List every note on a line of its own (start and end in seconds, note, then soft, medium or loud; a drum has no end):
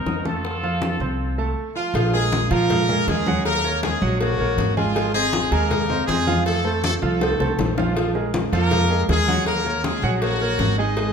0.00 0.26 D#4 medium
0.00 0.26 A#4 medium
0.06 0.95 F2 medium
0.06 0.22 D#4 medium
0.06 0.22 D#5 medium
0.06 0.22 D#6 medium
0.06 high bongo soft
0.06 low bongo medium
0.06 high conga medium
0.25 0.56 A3 medium
0.25 1.54 F4 medium
0.25 0.56 A4 medium
0.25 1.54 A4 loud
0.25 0.57 A5 medium
0.25 high bongo soft
0.25 high conga medium
0.45 high bongo medium
0.45 high conga soft
0.63 0.94 F3 medium
0.63 0.94 F4 medium
0.63 0.95 F5 medium
0.63 high bongo soft
0.63 high conga soft
0.82 high bongo medium
0.82 high conga loud
1.00 1.53 C2 medium
1.00 1.32 C4 medium
1.00 1.32 C5 medium
1.00 1.32 C6 medium
1.00 high conga soft
1.38 1.69 A3 medium
1.38 1.69 A4 medium
1.38 1.70 A5 medium
1.76 2.11 F3 medium
1.76 1.91 F4 medium
1.76 2.11 F4 medium
1.76 1.92 F5 medium
1.76 1.92 F6 medium
1.94 2.47 A#1 loud
1.94 2.10 F3 medium
1.94 2.11 F4 medium
1.94 2.11 F5 medium
1.94 cowbell loud
1.94 high conga soft
2.13 2.45 G#3 medium
2.13 2.49 G#3 medium
2.13 2.49 G#4 loud
2.13 2.45 G#4 medium
2.13 2.45 A#4 medium
2.13 high conga soft
2.32 cowbell medium
2.32 high conga loud
2.51 3.04 A#2 loud
2.51 2.82 F3 medium
2.51 3.08 A#3 medium
2.51 2.82 F4 medium
2.51 3.08 A#4 loud
2.51 2.82 F5 loud
2.51 cowbell medium
2.51 high conga soft
2.70 cowbell loud
2.70 high conga soft
2.70 low conga medium
2.89 3.04 G#3 medium
2.89 3.05 G#4 medium
2.89 3.05 A#4 medium
2.89 high conga soft
2.89 low conga medium
3.07 3.96 D#2 loud
3.07 3.23 G#3 medium
3.07 3.46 G#3 medium
3.07 3.46 G#4 loud
3.07 3.24 G#4 medium
3.07 3.24 A#4 medium
3.07 cowbell medium
3.07 high conga medium
3.26 3.58 F#3 medium
3.26 3.58 F#4 medium
3.26 3.58 F#5 loud
3.26 high conga medium
3.45 3.81 A#3 medium
3.45 3.81 A#4 loud
3.45 cowbell loud
3.45 high conga soft
3.64 3.95 A#3 medium
3.64 3.95 A#4 medium
3.64 3.95 C#5 medium
3.64 high conga soft
3.83 4.18 G#3 medium
3.83 4.18 G#4 loud
3.83 cowbell medium
3.83 high conga loud
4.01 4.37 A#1 loud
4.01 4.17 F#3 loud
4.01 4.17 F#4 medium
4.01 4.17 F#5 loud
4.01 high conga soft
4.20 4.74 F#3 medium
4.20 4.36 A#3 medium
4.20 4.73 F#4 medium
4.20 4.36 A#4 medium
4.20 4.36 C#5 medium
4.20 cowbell loud
4.20 high conga soft
4.39 4.57 A#1 medium
4.39 4.70 A#3 medium
4.39 4.70 A#4 medium
4.39 4.70 C#5 medium
4.39 high conga soft
4.57 5.46 G#1 medium
4.57 cowbell medium
4.57 high conga medium
4.77 5.15 F3 medium
4.77 4.92 G#3 medium
4.77 5.15 F4 loud
4.77 4.93 G#4 medium
4.77 4.93 G#5 medium
4.77 high conga medium
4.96 5.11 G#3 medium
4.96 5.11 G#4 medium
4.96 5.11 G#5 medium
4.96 cowbell loud
4.96 high conga soft
5.14 5.50 G#3 medium
5.14 5.45 C4 medium
5.14 5.50 G#4 loud
5.14 5.45 C5 medium
5.14 5.46 D#5 medium
5.14 high conga soft
5.33 cowbell medium
5.33 high conga loud
5.51 6.04 D#2 medium
5.51 5.83 G#3 medium
5.51 6.09 A#3 medium
5.51 5.83 G#4 loud
5.51 6.09 A#4 loud
5.51 5.83 G#5 medium
5.51 cowbell medium
5.51 high conga soft
5.71 cowbell loud
5.71 high conga soft
5.71 low conga medium
5.90 6.05 C4 medium
5.90 6.05 C5 medium
5.90 6.05 D#5 medium
5.90 high conga soft
5.90 low conga medium
6.08 6.96 F2 medium
6.08 6.43 G#3 medium
6.08 6.23 C4 medium
6.08 6.43 G#4 loud
6.08 6.24 C5 medium
6.08 6.24 D#5 medium
6.08 cowbell medium
6.08 high conga medium
6.27 6.58 F3 medium
6.27 6.58 F4 loud
6.27 6.58 F5 medium
6.27 high conga medium
6.46 6.81 A3 medium
6.46 6.81 A4 loud
6.46 cowbell loud
6.46 high conga soft
6.65 6.96 A3 medium
6.65 6.96 A4 medium
6.65 6.96 C5 medium
6.65 high conga soft
6.84 6.92 A3 medium
6.84 6.92 A4 loud
6.84 cowbell medium
6.84 high conga loud
7.02 7.37 C2 loud
7.02 7.18 F3 medium
7.02 7.55 A3 medium
7.02 7.18 F4 medium
7.02 7.55 A4 medium
7.02 7.18 F5 medium
7.02 high conga soft
7.21 7.37 A3 medium
7.21 7.37 A4 medium
7.21 7.37 C5 medium
7.21 cowbell loud
7.21 high bongo medium
7.21 high conga soft
7.40 7.57 C2 medium
7.40 7.71 A3 medium
7.40 7.71 A4 medium
7.40 7.71 C5 medium
7.40 high bongo medium
7.40 high conga soft
7.58 8.47 A#1 medium
7.58 cowbell medium
7.58 low bongo medium
7.58 high conga medium
7.77 7.93 F3 medium
7.77 8.13 F3 medium
7.77 7.93 F4 medium
7.77 8.13 F4 medium
7.77 7.93 F5 medium
7.77 low bongo loud
7.77 high conga medium
7.96 8.12 F3 medium
7.96 8.12 F4 medium
7.96 8.12 F5 medium
7.96 cowbell loud
7.96 high conga soft
8.15 8.46 G#3 medium
8.15 8.46 G#4 medium
8.15 8.46 A#4 medium
8.15 high conga soft
8.34 cowbell medium
8.34 high conga loud
8.52 9.05 F2 loud
8.52 8.83 F3 loud
8.52 9.05 A#3 medium
8.52 8.84 F4 medium
8.52 9.05 A#4 loud
8.52 8.84 F5 medium
8.52 cowbell medium
8.52 high conga soft
8.71 cowbell loud
8.71 high conga soft
8.71 low conga medium
8.90 9.05 G#3 medium
8.90 9.06 G#4 medium
8.90 9.06 A#4 medium
8.90 high conga soft
9.09 9.97 D#2 medium
9.09 9.24 G#3 medium
9.09 9.45 G#3 medium
9.09 9.25 G#4 medium
9.09 9.44 G#4 loud
9.09 9.25 A#4 medium
9.09 cowbell medium
9.09 high conga medium
9.28 9.59 F#3 medium
9.28 9.59 F#4 loud
9.28 9.59 F#5 medium
9.28 high conga medium
9.46 9.82 A#3 medium
9.46 9.82 A#4 loud
9.46 cowbell loud
9.46 high conga soft
9.65 9.96 A#3 medium
9.65 9.96 A#4 medium
9.65 9.97 C#5 medium
9.65 high conga soft
9.84 10.15 G#3 medium
9.84 10.13 G#4 loud
9.84 cowbell medium
9.84 high conga loud
10.02 10.55 A#1 loud
10.02 10.19 F#3 loud
10.02 10.19 F#4 loud
10.02 10.19 F#5 loud
10.02 high conga soft
10.14 10.22 G#4 medium
10.21 10.78 F#3 medium
10.21 10.37 A#3 medium
10.21 10.78 F#4 loud
10.21 10.37 A#4 medium
10.21 10.38 C#5 medium
10.21 cowbell loud
10.21 high conga soft
10.40 10.72 A#3 medium
10.40 10.72 A#4 medium
10.40 10.72 C#5 medium
10.40 high conga soft
10.59 11.13 G#1 medium
10.59 cowbell medium
10.59 high conga medium
10.78 10.94 G#3 medium
10.78 11.13 D#4 loud
10.78 10.94 G#4 loud
10.78 11.13 D#5 medium
10.78 10.94 G#5 medium
10.97 11.12 G#3 medium
10.97 11.12 G#4 medium
10.97 11.13 G#5 medium
10.97 cowbell loud
10.97 high conga soft